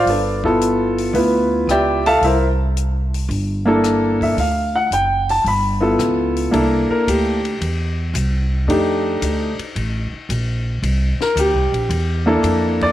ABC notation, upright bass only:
X:1
M:4/4
L:1/8
Q:"Swing" 1/4=112
K:Gdor
V:1 name="Upright bass" clef=bass
G,,,4 D,,2 _D,,2 | C,,4 G,,,4 | D,,2 ^F,,,2 G,,,2 _D,,2 | C,, z D,,2 E,,2 C,,2 |
F,,2 D,, z A,,, z B,,,2 | C,, z (3D,, C,, B,,, E,,2 F,,2 |]